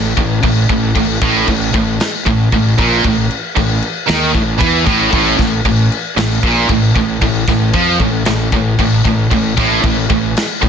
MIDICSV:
0, 0, Header, 1, 4, 480
1, 0, Start_track
1, 0, Tempo, 522193
1, 879, Time_signature, 4, 2, 24, 8
1, 9825, End_track
2, 0, Start_track
2, 0, Title_t, "Distorted electric guitar"
2, 0, Program_c, 0, 30
2, 0, Note_on_c, 0, 45, 61
2, 112, Note_off_c, 0, 45, 0
2, 159, Note_on_c, 0, 45, 69
2, 351, Note_off_c, 0, 45, 0
2, 395, Note_on_c, 0, 45, 76
2, 589, Note_off_c, 0, 45, 0
2, 642, Note_on_c, 0, 45, 60
2, 832, Note_off_c, 0, 45, 0
2, 874, Note_on_c, 0, 45, 80
2, 1068, Note_off_c, 0, 45, 0
2, 1122, Note_on_c, 0, 45, 118
2, 1352, Note_off_c, 0, 45, 0
2, 1363, Note_on_c, 0, 45, 76
2, 1552, Note_off_c, 0, 45, 0
2, 1604, Note_on_c, 0, 45, 75
2, 1792, Note_off_c, 0, 45, 0
2, 2089, Note_on_c, 0, 45, 66
2, 2274, Note_off_c, 0, 45, 0
2, 2335, Note_on_c, 0, 45, 79
2, 2517, Note_off_c, 0, 45, 0
2, 2564, Note_on_c, 0, 46, 93
2, 2792, Note_off_c, 0, 46, 0
2, 2806, Note_on_c, 0, 45, 81
2, 2992, Note_off_c, 0, 45, 0
2, 3280, Note_on_c, 0, 45, 64
2, 3469, Note_off_c, 0, 45, 0
2, 3761, Note_on_c, 0, 51, 100
2, 3990, Note_off_c, 0, 51, 0
2, 4004, Note_on_c, 0, 45, 73
2, 4190, Note_off_c, 0, 45, 0
2, 4238, Note_on_c, 0, 52, 111
2, 4468, Note_off_c, 0, 52, 0
2, 4478, Note_on_c, 0, 45, 96
2, 4708, Note_off_c, 0, 45, 0
2, 4722, Note_on_c, 0, 45, 117
2, 4950, Note_off_c, 0, 45, 0
2, 4969, Note_on_c, 0, 45, 75
2, 5153, Note_off_c, 0, 45, 0
2, 5200, Note_on_c, 0, 45, 73
2, 5388, Note_off_c, 0, 45, 0
2, 5677, Note_on_c, 0, 45, 64
2, 5867, Note_off_c, 0, 45, 0
2, 5922, Note_on_c, 0, 46, 90
2, 6150, Note_off_c, 0, 46, 0
2, 6160, Note_on_c, 0, 45, 67
2, 6349, Note_off_c, 0, 45, 0
2, 6404, Note_on_c, 0, 45, 65
2, 6590, Note_off_c, 0, 45, 0
2, 6641, Note_on_c, 0, 45, 80
2, 6829, Note_off_c, 0, 45, 0
2, 6886, Note_on_c, 0, 45, 77
2, 7072, Note_off_c, 0, 45, 0
2, 7120, Note_on_c, 0, 53, 88
2, 7350, Note_off_c, 0, 53, 0
2, 7360, Note_on_c, 0, 45, 70
2, 7550, Note_off_c, 0, 45, 0
2, 7604, Note_on_c, 0, 45, 69
2, 7792, Note_off_c, 0, 45, 0
2, 7843, Note_on_c, 0, 45, 68
2, 8032, Note_off_c, 0, 45, 0
2, 8087, Note_on_c, 0, 45, 77
2, 8274, Note_off_c, 0, 45, 0
2, 8318, Note_on_c, 0, 45, 73
2, 8510, Note_off_c, 0, 45, 0
2, 8563, Note_on_c, 0, 45, 86
2, 8753, Note_off_c, 0, 45, 0
2, 8800, Note_on_c, 0, 45, 114
2, 9032, Note_off_c, 0, 45, 0
2, 9047, Note_on_c, 0, 45, 76
2, 9236, Note_off_c, 0, 45, 0
2, 9289, Note_on_c, 0, 45, 69
2, 9477, Note_off_c, 0, 45, 0
2, 9764, Note_on_c, 0, 45, 64
2, 9825, Note_off_c, 0, 45, 0
2, 9825, End_track
3, 0, Start_track
3, 0, Title_t, "Fingered electric bass"
3, 0, Program_c, 1, 33
3, 0, Note_on_c, 1, 33, 93
3, 137, Note_off_c, 1, 33, 0
3, 155, Note_on_c, 1, 33, 91
3, 380, Note_off_c, 1, 33, 0
3, 395, Note_on_c, 1, 33, 88
3, 620, Note_off_c, 1, 33, 0
3, 637, Note_on_c, 1, 33, 95
3, 860, Note_off_c, 1, 33, 0
3, 879, Note_on_c, 1, 33, 80
3, 1102, Note_off_c, 1, 33, 0
3, 1115, Note_on_c, 1, 33, 96
3, 1339, Note_off_c, 1, 33, 0
3, 1361, Note_on_c, 1, 33, 89
3, 1582, Note_off_c, 1, 33, 0
3, 1594, Note_on_c, 1, 33, 88
3, 1818, Note_off_c, 1, 33, 0
3, 2074, Note_on_c, 1, 33, 91
3, 2298, Note_off_c, 1, 33, 0
3, 2319, Note_on_c, 1, 33, 82
3, 2540, Note_off_c, 1, 33, 0
3, 2561, Note_on_c, 1, 34, 112
3, 2781, Note_off_c, 1, 34, 0
3, 2800, Note_on_c, 1, 33, 85
3, 3021, Note_off_c, 1, 33, 0
3, 3281, Note_on_c, 1, 33, 85
3, 3501, Note_off_c, 1, 33, 0
3, 3763, Note_on_c, 1, 39, 108
3, 3981, Note_off_c, 1, 39, 0
3, 4000, Note_on_c, 1, 33, 89
3, 4220, Note_off_c, 1, 33, 0
3, 4237, Note_on_c, 1, 40, 98
3, 4458, Note_off_c, 1, 40, 0
3, 4473, Note_on_c, 1, 33, 94
3, 4696, Note_off_c, 1, 33, 0
3, 4715, Note_on_c, 1, 33, 91
3, 4937, Note_off_c, 1, 33, 0
3, 4952, Note_on_c, 1, 33, 78
3, 5175, Note_off_c, 1, 33, 0
3, 5190, Note_on_c, 1, 33, 92
3, 5414, Note_off_c, 1, 33, 0
3, 5668, Note_on_c, 1, 33, 83
3, 5894, Note_off_c, 1, 33, 0
3, 5910, Note_on_c, 1, 34, 110
3, 6135, Note_off_c, 1, 34, 0
3, 6153, Note_on_c, 1, 33, 93
3, 6376, Note_off_c, 1, 33, 0
3, 6391, Note_on_c, 1, 33, 89
3, 6615, Note_off_c, 1, 33, 0
3, 6633, Note_on_c, 1, 33, 80
3, 6856, Note_off_c, 1, 33, 0
3, 6872, Note_on_c, 1, 33, 85
3, 7096, Note_off_c, 1, 33, 0
3, 7114, Note_on_c, 1, 41, 103
3, 7337, Note_off_c, 1, 41, 0
3, 7351, Note_on_c, 1, 33, 90
3, 7576, Note_off_c, 1, 33, 0
3, 7605, Note_on_c, 1, 33, 91
3, 7824, Note_off_c, 1, 33, 0
3, 7832, Note_on_c, 1, 33, 88
3, 8057, Note_off_c, 1, 33, 0
3, 8077, Note_on_c, 1, 33, 86
3, 8300, Note_off_c, 1, 33, 0
3, 8319, Note_on_c, 1, 33, 92
3, 8542, Note_off_c, 1, 33, 0
3, 8557, Note_on_c, 1, 33, 73
3, 8781, Note_off_c, 1, 33, 0
3, 8801, Note_on_c, 1, 33, 93
3, 9024, Note_off_c, 1, 33, 0
3, 9036, Note_on_c, 1, 33, 92
3, 9261, Note_off_c, 1, 33, 0
3, 9282, Note_on_c, 1, 33, 88
3, 9505, Note_off_c, 1, 33, 0
3, 9765, Note_on_c, 1, 33, 83
3, 9825, Note_off_c, 1, 33, 0
3, 9825, End_track
4, 0, Start_track
4, 0, Title_t, "Drums"
4, 156, Note_on_c, 9, 49, 64
4, 158, Note_on_c, 9, 36, 83
4, 248, Note_off_c, 9, 49, 0
4, 250, Note_off_c, 9, 36, 0
4, 396, Note_on_c, 9, 49, 94
4, 399, Note_on_c, 9, 36, 91
4, 488, Note_off_c, 9, 49, 0
4, 490, Note_off_c, 9, 36, 0
4, 639, Note_on_c, 9, 36, 95
4, 639, Note_on_c, 9, 49, 67
4, 730, Note_off_c, 9, 36, 0
4, 731, Note_off_c, 9, 49, 0
4, 875, Note_on_c, 9, 49, 89
4, 878, Note_on_c, 9, 36, 98
4, 967, Note_off_c, 9, 49, 0
4, 970, Note_off_c, 9, 36, 0
4, 1116, Note_on_c, 9, 49, 75
4, 1119, Note_on_c, 9, 36, 118
4, 1208, Note_off_c, 9, 49, 0
4, 1211, Note_off_c, 9, 36, 0
4, 1357, Note_on_c, 9, 49, 95
4, 1359, Note_on_c, 9, 36, 90
4, 1449, Note_off_c, 9, 49, 0
4, 1451, Note_off_c, 9, 36, 0
4, 1599, Note_on_c, 9, 49, 70
4, 1600, Note_on_c, 9, 36, 83
4, 1691, Note_off_c, 9, 49, 0
4, 1692, Note_off_c, 9, 36, 0
4, 1838, Note_on_c, 9, 49, 92
4, 1848, Note_on_c, 9, 38, 127
4, 1930, Note_off_c, 9, 49, 0
4, 1940, Note_off_c, 9, 38, 0
4, 2080, Note_on_c, 9, 36, 91
4, 2081, Note_on_c, 9, 49, 58
4, 2172, Note_off_c, 9, 36, 0
4, 2173, Note_off_c, 9, 49, 0
4, 2317, Note_on_c, 9, 49, 85
4, 2320, Note_on_c, 9, 36, 97
4, 2409, Note_off_c, 9, 49, 0
4, 2412, Note_off_c, 9, 36, 0
4, 2560, Note_on_c, 9, 36, 101
4, 2561, Note_on_c, 9, 49, 70
4, 2652, Note_off_c, 9, 36, 0
4, 2653, Note_off_c, 9, 49, 0
4, 2794, Note_on_c, 9, 49, 85
4, 2799, Note_on_c, 9, 36, 97
4, 2886, Note_off_c, 9, 49, 0
4, 2891, Note_off_c, 9, 36, 0
4, 3039, Note_on_c, 9, 49, 62
4, 3130, Note_off_c, 9, 49, 0
4, 3278, Note_on_c, 9, 36, 87
4, 3279, Note_on_c, 9, 49, 89
4, 3370, Note_off_c, 9, 36, 0
4, 3371, Note_off_c, 9, 49, 0
4, 3514, Note_on_c, 9, 49, 65
4, 3606, Note_off_c, 9, 49, 0
4, 3754, Note_on_c, 9, 49, 92
4, 3764, Note_on_c, 9, 38, 112
4, 3846, Note_off_c, 9, 49, 0
4, 3856, Note_off_c, 9, 38, 0
4, 3994, Note_on_c, 9, 36, 89
4, 3994, Note_on_c, 9, 49, 66
4, 4086, Note_off_c, 9, 36, 0
4, 4086, Note_off_c, 9, 49, 0
4, 4234, Note_on_c, 9, 36, 112
4, 4234, Note_on_c, 9, 49, 85
4, 4326, Note_off_c, 9, 36, 0
4, 4326, Note_off_c, 9, 49, 0
4, 4474, Note_on_c, 9, 36, 110
4, 4476, Note_on_c, 9, 49, 70
4, 4566, Note_off_c, 9, 36, 0
4, 4568, Note_off_c, 9, 49, 0
4, 4711, Note_on_c, 9, 49, 96
4, 4714, Note_on_c, 9, 36, 103
4, 4803, Note_off_c, 9, 49, 0
4, 4805, Note_off_c, 9, 36, 0
4, 4955, Note_on_c, 9, 36, 99
4, 4959, Note_on_c, 9, 49, 77
4, 4970, Note_on_c, 9, 38, 39
4, 5047, Note_off_c, 9, 36, 0
4, 5051, Note_off_c, 9, 49, 0
4, 5061, Note_off_c, 9, 38, 0
4, 5195, Note_on_c, 9, 36, 80
4, 5198, Note_on_c, 9, 49, 89
4, 5287, Note_off_c, 9, 36, 0
4, 5290, Note_off_c, 9, 49, 0
4, 5441, Note_on_c, 9, 49, 70
4, 5533, Note_off_c, 9, 49, 0
4, 5677, Note_on_c, 9, 49, 100
4, 5688, Note_on_c, 9, 38, 116
4, 5769, Note_off_c, 9, 49, 0
4, 5779, Note_off_c, 9, 38, 0
4, 5912, Note_on_c, 9, 36, 103
4, 5916, Note_on_c, 9, 49, 67
4, 6004, Note_off_c, 9, 36, 0
4, 6008, Note_off_c, 9, 49, 0
4, 6150, Note_on_c, 9, 49, 92
4, 6152, Note_on_c, 9, 36, 104
4, 6242, Note_off_c, 9, 49, 0
4, 6244, Note_off_c, 9, 36, 0
4, 6392, Note_on_c, 9, 49, 58
4, 6393, Note_on_c, 9, 36, 84
4, 6484, Note_off_c, 9, 49, 0
4, 6485, Note_off_c, 9, 36, 0
4, 6634, Note_on_c, 9, 36, 90
4, 6635, Note_on_c, 9, 49, 85
4, 6726, Note_off_c, 9, 36, 0
4, 6727, Note_off_c, 9, 49, 0
4, 6872, Note_on_c, 9, 36, 97
4, 6874, Note_on_c, 9, 49, 65
4, 6884, Note_on_c, 9, 38, 33
4, 6964, Note_off_c, 9, 36, 0
4, 6965, Note_off_c, 9, 49, 0
4, 6976, Note_off_c, 9, 38, 0
4, 7108, Note_on_c, 9, 49, 79
4, 7114, Note_on_c, 9, 36, 97
4, 7200, Note_off_c, 9, 49, 0
4, 7206, Note_off_c, 9, 36, 0
4, 7350, Note_on_c, 9, 49, 67
4, 7352, Note_on_c, 9, 36, 89
4, 7442, Note_off_c, 9, 49, 0
4, 7444, Note_off_c, 9, 36, 0
4, 7585, Note_on_c, 9, 49, 78
4, 7595, Note_on_c, 9, 38, 125
4, 7677, Note_off_c, 9, 49, 0
4, 7687, Note_off_c, 9, 38, 0
4, 7833, Note_on_c, 9, 49, 60
4, 7835, Note_on_c, 9, 36, 93
4, 7925, Note_off_c, 9, 49, 0
4, 7927, Note_off_c, 9, 36, 0
4, 8078, Note_on_c, 9, 36, 91
4, 8082, Note_on_c, 9, 49, 95
4, 8170, Note_off_c, 9, 36, 0
4, 8174, Note_off_c, 9, 49, 0
4, 8320, Note_on_c, 9, 36, 97
4, 8322, Note_on_c, 9, 49, 65
4, 8412, Note_off_c, 9, 36, 0
4, 8414, Note_off_c, 9, 49, 0
4, 8561, Note_on_c, 9, 36, 98
4, 8565, Note_on_c, 9, 49, 79
4, 8653, Note_off_c, 9, 36, 0
4, 8657, Note_off_c, 9, 49, 0
4, 8802, Note_on_c, 9, 36, 123
4, 8806, Note_on_c, 9, 49, 73
4, 8816, Note_on_c, 9, 38, 34
4, 8894, Note_off_c, 9, 36, 0
4, 8898, Note_off_c, 9, 49, 0
4, 8908, Note_off_c, 9, 38, 0
4, 9043, Note_on_c, 9, 36, 94
4, 9043, Note_on_c, 9, 49, 89
4, 9135, Note_off_c, 9, 36, 0
4, 9135, Note_off_c, 9, 49, 0
4, 9283, Note_on_c, 9, 36, 90
4, 9285, Note_on_c, 9, 49, 65
4, 9375, Note_off_c, 9, 36, 0
4, 9376, Note_off_c, 9, 49, 0
4, 9528, Note_on_c, 9, 49, 94
4, 9538, Note_on_c, 9, 38, 123
4, 9620, Note_off_c, 9, 49, 0
4, 9630, Note_off_c, 9, 38, 0
4, 9768, Note_on_c, 9, 36, 81
4, 9775, Note_on_c, 9, 49, 69
4, 9825, Note_off_c, 9, 36, 0
4, 9825, Note_off_c, 9, 49, 0
4, 9825, End_track
0, 0, End_of_file